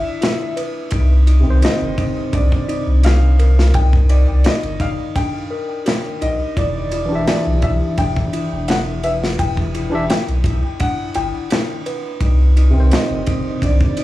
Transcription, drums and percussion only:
0.22 snare, ride
0.57 ride
0.91 kick, ride
1.27 ride
1.62 snare, ride
1.98 kick, ride
2.33 kick, ride
2.52 kick
2.69 ride
3.03 snare, ride
3.39 ride
3.59 snare
3.74 kick, ride
3.93 kick
4.09 ride
4.44 snare, ride
4.63 ride
4.80 kick, ride
5.16 kick, ride
5.86 snare, ride
6.22 ride
6.57 kick, ride
6.91 ride
7.27 snare, ride
7.62 kick, ride
7.98 kick, ride
8.17 kick
8.33 ride
8.68 snare, ride
9.03 ride
9.23 snare
9.39 kick, ride
9.57 kick
9.75 ride
10.10 snare, ride
10.28 ride
10.44 kick, ride
10.80 kick, ride
11.14 ride
11.50 snare, ride
11.86 ride
12.21 kick, ride
12.57 ride
12.91 snare, ride
13.27 kick, ride
13.62 kick, ride
13.81 kick
13.97 ride

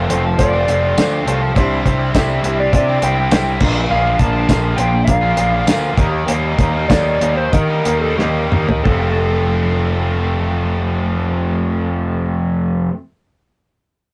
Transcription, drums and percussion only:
0.10 closed hi-hat
0.39 kick, closed hi-hat
0.68 closed hi-hat
0.98 snare, closed hi-hat, tambourine
1.28 closed hi-hat
1.56 kick, closed hi-hat
1.86 kick, closed hi-hat
2.15 kick, snare, closed hi-hat, tambourine
2.44 closed hi-hat
2.73 kick, closed hi-hat
3.02 closed hi-hat
3.31 snare, closed hi-hat, tambourine
3.60 kick, crash
4.19 kick, closed hi-hat
4.49 kick, snare, closed hi-hat, tambourine
4.78 closed hi-hat
5.08 kick, closed hi-hat
5.37 closed hi-hat
5.67 snare, closed hi-hat, tambourine
5.98 kick, closed hi-hat
6.28 closed hi-hat
6.59 kick, closed hi-hat
6.90 kick, snare, closed hi-hat, tambourine
7.21 closed hi-hat
7.53 kick, closed hi-hat
7.85 closed hi-hat
8.19 snare
8.52 mid tom
8.69 floor tom
8.85 kick

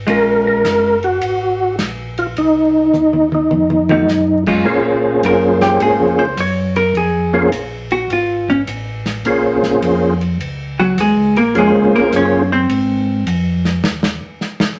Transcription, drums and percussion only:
0.08 ride
0.65 snare, hi-hat pedal, ride
1.03 ride
1.21 ride
1.79 snare, hi-hat pedal, ride
2.18 ride
2.37 ride
2.94 hi-hat pedal, mid tom
3.13 mid tom
3.32 mid tom
3.51 mid tom
3.70 mid tom
3.89 mid tom
4.08 snare, hi-hat pedal
4.47 kick, crash
5.23 hi-hat pedal, ride
5.61 snare, ride
5.80 ride
6.37 hi-hat pedal, ride
6.76 ride
6.95 ride
7.52 hi-hat pedal, ride
7.91 ride
8.10 ride
8.48 kick
8.67 hi-hat pedal, ride
9.06 snare, ride
9.25 ride
9.63 snare
9.82 hi-hat pedal, ride
10.21 ride
10.40 ride
10.98 hi-hat pedal, ride
11.36 ride
11.55 ride
12.12 hi-hat pedal, ride
12.70 ride
13.27 hi-hat pedal, ride
13.65 snare, ride
13.84 snare
14.03 snare
14.41 snare, hi-hat pedal
14.60 snare

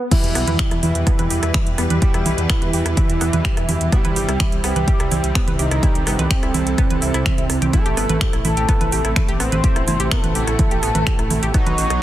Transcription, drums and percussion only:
0.11 kick, closed hi-hat, crash, low conga
0.24 closed hi-hat
0.35 cross-stick, open hi-hat
0.48 closed hi-hat, low conga
0.59 finger snap, kick, closed hi-hat
0.71 cross-stick, closed hi-hat
0.83 open hi-hat, low conga
0.95 closed hi-hat
1.07 kick, cross-stick, closed hi-hat
1.19 closed hi-hat, low conga
1.30 open hi-hat
1.43 cross-stick, closed hi-hat
1.54 finger snap, kick, closed hi-hat, low conga
1.67 closed hi-hat
1.78 cross-stick, open hi-hat
1.90 closed hi-hat, low conga
2.02 kick, closed hi-hat
2.14 cross-stick, closed hi-hat
2.26 open hi-hat, low conga
2.38 closed hi-hat
2.50 finger snap, kick, cross-stick, closed hi-hat
2.62 closed hi-hat, low conga
2.73 open hi-hat
2.86 cross-stick, closed hi-hat
2.97 kick, closed hi-hat, low conga
3.10 closed hi-hat
3.21 cross-stick, open hi-hat
3.33 closed hi-hat, low conga
3.45 finger snap, kick, closed hi-hat
3.57 cross-stick, closed hi-hat
3.69 open hi-hat, low conga
3.81 closed hi-hat
3.92 kick, cross-stick, closed hi-hat
4.05 closed hi-hat, low conga
4.16 open hi-hat
4.29 cross-stick, closed hi-hat
4.40 finger snap, kick, closed hi-hat, low conga
4.52 closed hi-hat
4.64 cross-stick, open hi-hat
4.76 closed hi-hat, low conga
4.88 kick, closed hi-hat
5.00 cross-stick, closed hi-hat
5.12 open hi-hat, low conga
5.24 closed hi-hat
5.35 finger snap, kick, cross-stick, closed hi-hat
5.48 closed hi-hat, low conga
5.59 open hi-hat
5.71 cross-stick, closed hi-hat
5.83 kick, closed hi-hat, low conga
5.95 closed hi-hat
6.07 cross-stick, open hi-hat
6.19 closed hi-hat, low conga
6.31 finger snap, kick, closed hi-hat
6.43 cross-stick, closed hi-hat
6.54 open hi-hat, low conga
6.67 closed hi-hat
6.78 kick, cross-stick, closed hi-hat
6.90 closed hi-hat, low conga
7.02 open hi-hat
7.14 cross-stick, closed hi-hat
7.26 finger snap, kick, closed hi-hat, low conga
7.38 closed hi-hat
7.50 cross-stick, open hi-hat
7.62 closed hi-hat, low conga
7.73 kick, closed hi-hat, low conga
7.86 closed hi-hat
7.97 cross-stick, open hi-hat
8.09 closed hi-hat, low conga
8.21 finger snap, kick, closed hi-hat
8.33 cross-stick, closed hi-hat
8.45 open hi-hat, low conga
8.57 closed hi-hat
8.69 kick, cross-stick, closed hi-hat
8.81 closed hi-hat, low conga
8.92 open hi-hat
9.05 cross-stick, closed hi-hat
9.16 finger snap, kick, closed hi-hat, low conga
9.29 closed hi-hat
9.40 cross-stick, open hi-hat
9.52 closed hi-hat, low conga
9.64 kick, closed hi-hat
9.76 cross-stick, closed hi-hat
9.88 open hi-hat, low conga
10.00 closed hi-hat
10.11 finger snap, kick, cross-stick, closed hi-hat
10.24 closed hi-hat, low conga
10.35 open hi-hat
10.47 cross-stick, closed hi-hat
10.59 kick, closed hi-hat, low conga
10.71 closed hi-hat
10.83 cross-stick, open hi-hat
10.95 closed hi-hat, low conga
11.07 finger snap, kick, closed hi-hat
11.19 cross-stick, closed hi-hat
11.30 open hi-hat, low conga
11.43 closed hi-hat
11.54 kick, cross-stick, closed hi-hat
11.66 closed hi-hat, low conga
11.78 open hi-hat
11.90 cross-stick, closed hi-hat

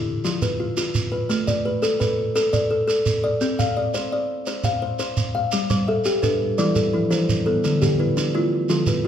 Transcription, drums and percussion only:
0.25 shekere
0.42 shekere
0.77 shekere
0.95 shekere
1.30 shekere
1.48 shekere
1.83 shekere
2.01 shekere
2.36 shekere
2.53 shekere
2.89 shekere
3.06 shekere
3.41 shekere
3.59 shekere
3.94 shekere
4.46 shekere
4.64 shekere
4.99 shekere
5.17 shekere
5.52 shekere
5.70 shekere
6.05 shekere
6.23 shekere
6.58 shekere
6.76 shekere
7.12 shekere
7.29 shekere
7.64 shekere
7.82 shekere
8.17 shekere
8.69 shekere
8.86 shekere

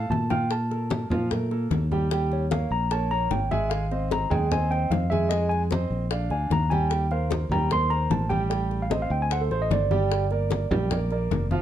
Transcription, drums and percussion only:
0.12 high conga
0.30 low bongo, high conga
0.51 high bongo
0.71 high bongo, high conga
0.90 high bongo, high conga
1.11 high conga, low conga
1.31 high bongo, high conga, low conga
1.51 high bongo, high conga
1.71 high bongo, low bongo, high conga
1.91 high bongo, high conga
2.11 high bongo, high conga
2.32 high bongo, high conga
2.51 high bongo, high conga
2.72 high conga
2.91 high bongo, high conga
3.11 high bongo, high conga
3.31 high bongo, low bongo, high conga
3.51 high bongo, high conga
3.71 high bongo, high conga
3.91 high bongo, high conga
4.11 high bongo, high conga
4.31 high conga, low conga
4.52 high bongo, high conga, low conga
4.72 high bongo, high conga
4.92 high bongo, low bongo, high conga
5.12 high bongo, high conga
5.31 high bongo, high conga
5.51 high bongo, high conga
5.71 high bongo, high conga
5.92 high conga
6.11 high bongo, high conga
6.30 high bongo, high conga
6.51 high bongo, low bongo, high conga
6.71 high bongo, high conga
6.91 high bongo, high conga
7.11 high bongo, high conga
7.31 high bongo, high conga
7.52 high conga, low conga
7.71 high bongo, high conga, low conga
7.91 high bongo, high conga
8.11 high bongo, low bongo, high conga
8.30 high bongo, high conga
8.51 high bongo, high conga
8.71 high bongo, high conga
8.91 high bongo, high conga
9.11 high conga
9.31 high bongo, high conga
9.51 high bongo, high conga
9.71 high bongo, low bongo, high conga
9.91 high bongo, high conga
10.12 high bongo
10.31 high bongo, high conga
10.50 high bongo, high conga
10.71 high conga, low conga
10.91 high bongo, high conga, low conga
11.11 high bongo, high conga
11.31 high bongo, low bongo, high conga
11.51 high bongo, high conga

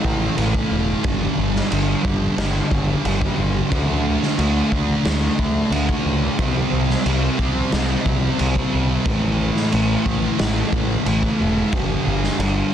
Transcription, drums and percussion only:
0.04 kick
0.38 crash
0.55 kick
1.04 kick, crash
1.56 snare
1.72 crash
2.05 kick
2.38 snare, crash
2.71 kick
3.05 crash
3.22 kick
3.72 kick, crash
4.23 snare
4.39 crash
4.72 kick
5.05 snare, crash
5.39 kick
5.72 crash
5.89 kick
6.39 kick, crash
6.90 snare
7.06 crash
7.39 kick
7.72 snare, crash
8.06 kick
8.39 crash
8.56 kick
9.05 kick, crash
9.56 snare
9.72 crash
10.06 kick
10.39 snare, crash
10.73 kick
11.06 crash
11.23 kick
11.73 kick, crash
12.24 snare
12.40 crash

